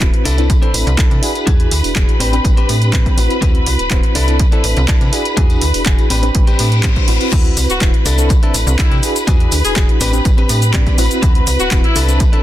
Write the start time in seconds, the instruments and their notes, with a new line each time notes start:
Already playing: string section B4 B5
0.00 fm bass D1, clean electric guitar C4 E4 F#4 A4, reed electric piano C4 E4 F#4 B4, kick, clap, closed hi-hat
0.14 closed hi-hat
0.25 fm bass C2, clean electric guitar D4 E4 A4, open hi-hat, tambourine
0.38 reed electric piano C4 D4 E4 A4, closed hi-hat, tambourine
0.50 kick, closed hi-hat, tambourine
0.61 reed electric piano C4 D4 E4 A4, clean electric guitar D4 E4 C5, closed hi-hat
0.74 fm bass A1, open hi-hat, tambourine
0.86 fm bass C2, muted clean electric guitar stroke, closed hi-hat, tambourine
0.98 clean electric guitar D4 E4 A4, kick, clap, closed hi-hat, tambourine
1.11 fm bass C3, closed hi-hat, tambourine
1.22 reed electric piano D4 E4 F#4 G#4, open hi-hat, tambourine
1.35 closed hi-hat, tambourine
1.47 fm bass E2, clean electric guitar D4 F#4 G#4, kick, closed hi-hat
1.60 closed hi-hat
1.71 fm bass D2, open hi-hat, tambourine
1.84 fm bass E1, open hi-hat, tambourine
1.95 fm bass E1, reed electric piano D4 E4 F#4 G#4, clean electric guitar D4 F#4 G#4, kick, clap, closed hi-hat
2.09 closed hi-hat
2.20 fm bass A1, clean electric guitar C4 D4 G4 B4, open hi-hat, tambourine
2.33 reed electric piano C4 D4 G4 B4, closed hi-hat, tambourine
2.45 fm bass A1, kick, closed hi-hat, tambourine
2.56 reed electric piano C4 D4 G4 B4, clean electric guitar C4 D4 G4 B4, closed hi-hat
2.69 fm bass A2, open hi-hat, tambourine
2.81 muted clean electric guitar stroke, closed hi-hat, tambourine
2.93 clean electric guitar C4 D4 G4 B4, kick, clap, closed hi-hat, tambourine
3.06 kick, closed hi-hat, tambourine
3.17 fm bass A1, reed electric piano C4 E4 F#4 B4, open hi-hat, tambourine
3.30 closed hi-hat, tambourine
3.42 fm bass D2, clean electric guitar C4 E4 F#4 B4, kick, closed hi-hat, tambourine
3.55 closed hi-hat
3.66 fm bass C2, open hi-hat, tambourine
3.79 fm bass D1, closed hi-hat, tambourine
3.90 fm bass D1, clean electric guitar C4 E4 F#4 C5, reed electric piano C4 E4 F#4 B4, kick, clap, closed hi-hat
4.03 closed hi-hat
4.15 fm bass C2, clean electric guitar D4 E4 A4, open hi-hat, tambourine
4.27 reed electric piano C4 D4 E4 A4, closed hi-hat, tambourine
4.39 kick, closed hi-hat, tambourine
4.51 reed electric piano C4 D4 E4 A4, clean electric guitar D4 E4 A4, closed hi-hat
4.64 fm bass A1, open hi-hat, tambourine
4.76 fm bass C2, muted clean electric guitar stroke, closed hi-hat, tambourine
4.88 clean electric guitar D4 E4 A4, kick, clap, closed hi-hat, tambourine
5.01 fm bass C3, closed hi-hat, tambourine
5.12 reed electric piano D4 E4 F#4 G#4, open hi-hat, tambourine
5.25 closed hi-hat, tambourine
5.37 fm bass E2, clean electric guitar D4 F#4 G#4, kick, closed hi-hat
5.50 closed hi-hat, tambourine
5.61 fm bass D2, open hi-hat, tambourine
5.74 fm bass E1, open hi-hat, tambourine
5.85 fm bass E1, reed electric piano D4 E4 F#4 G#4, clean electric guitar D4 F#4 G#4, kick, clap, closed hi-hat, tambourine
5.99 closed hi-hat, tambourine
6.10 fm bass A1, clean electric guitar C4 D4 G4 B4, open hi-hat, tambourine
6.23 reed electric piano C4 D4 G4 B4, closed hi-hat, tambourine
6.35 fm bass A1, kick, closed hi-hat, tambourine, reverse cymbal
6.47 reed electric piano C4 D4 G4 B4, clean electric guitar C4 D4 G4 B4, closed hi-hat, tambourine
6.59 fm bass A2, open hi-hat, tambourine
6.72 muted clean electric guitar stroke, closed hi-hat, tambourine
6.83 clean electric guitar C4 D4 G4 C5, kick, clap, closed hi-hat
6.96 kick, closed hi-hat, tambourine
7.07 fm bass A1, reed electric piano C4 E4 F#4 B4, open hi-hat, tambourine
7.21 closed hi-hat, tambourine
7.32 fm bass D2, clean electric guitar C4 E4 F#4 B4, string section B4 B5, kick, closed hi-hat, crash, shaker
7.45 closed hi-hat
7.57 fm bass C2, open hi-hat, tambourine, shaker
7.69 fm bass D1, horn section F#4, closed hi-hat, tambourine, shaker
7.81 fm bass D1, reed electric piano C4 E4 F#4 B4, clean electric guitar C4 E4 F#4 B4, kick, clap, closed hi-hat, shaker
7.94 closed hi-hat
8.05 fm bass C2, clean electric guitar D4 E4 A4, open hi-hat, tambourine, shaker
8.18 reed electric piano C4 D4 E4 A4, closed hi-hat, tambourine, shaker
8.29 kick, closed hi-hat, tambourine, shaker
8.42 reed electric piano C4 D4 E4 A4, clean electric guitar D4 E4 A4, closed hi-hat
8.54 fm bass A1, open hi-hat, tambourine, shaker
8.67 fm bass C2, muted clean electric guitar stroke, closed hi-hat, tambourine, shaker
8.79 clean electric guitar D4 E4 G4, horn section E4, kick, clap, closed hi-hat, tambourine, shaker
8.91 fm bass C3, closed hi-hat, tambourine
9.02 reed electric piano D4 E4 F#4 G#4, open hi-hat, tambourine, shaker
9.16 closed hi-hat, tambourine, shaker
9.27 fm bass E2, clean electric guitar D4 F#4 G#4, kick, closed hi-hat, tambourine, shaker
9.40 closed hi-hat
9.51 fm bass D2, open hi-hat, tambourine, shaker
9.65 fm bass E1, horn section G#4, open hi-hat, tambourine, shaker
9.76 fm bass E1, clean electric guitar D4 F#4 G#4, reed electric piano D4 E4 F#4 G#4, horn section G#4, kick, clap, closed hi-hat, tambourine, shaker
9.89 closed hi-hat
10.00 fm bass A1, clean electric guitar C4 D4 G4 B4, open hi-hat, tambourine, shaker
10.13 reed electric piano C4 D4 G4 B4, closed hi-hat, shaker
10.25 fm bass A1, kick, closed hi-hat, tambourine, shaker
10.37 reed electric piano C4 D4 G4 B4, clean electric guitar C4 D4 G4 B4, closed hi-hat
10.49 fm bass A2, open hi-hat, tambourine, shaker
10.62 muted clean electric guitar stroke, closed hi-hat, tambourine, shaker
10.73 clean electric guitar C4 D4 G4 D5, kick, clap, closed hi-hat, tambourine, shaker
10.87 kick, closed hi-hat, tambourine
10.97 fm bass A1, reed electric piano C4 E4 F#4 B4, open hi-hat, tambourine, shaker
11.11 closed hi-hat, tambourine, shaker
11.22 fm bass D2, clean electric guitar C4 E4 F#4 B4, kick, closed hi-hat, tambourine, shaker
11.35 closed hi-hat
11.47 fm bass C2, open hi-hat, tambourine, shaker
11.60 fm bass D1, horn section F#4, closed hi-hat, tambourine, shaker
11.71 fm bass D1, clean electric guitar C4 E4 F#4 B4, reed electric piano C4 E4 F#4 B4, kick, clap, closed hi-hat, tambourine, shaker
11.84 horn section E4, closed hi-hat
11.95 fm bass C2, clean electric guitar D4 E4 A4, open hi-hat, tambourine, shaker
12.08 reed electric piano C4 D4 E4 A4, closed hi-hat, tambourine, shaker
12.20 kick, closed hi-hat, tambourine, shaker
12.32 reed electric piano C4 D4 E4 A4, clean electric guitar D4 E4 A4, closed hi-hat